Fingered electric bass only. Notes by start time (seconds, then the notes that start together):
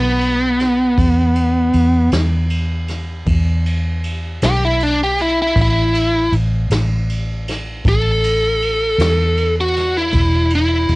Already playing: B1
0.98 E2
1.74 E2
2.12 E2
3.26 E2
4.42 B1
5.56 A1
6.32 A1
6.70 A1
7.85 A1
8.98 E2
10.13 E1
10.89 E1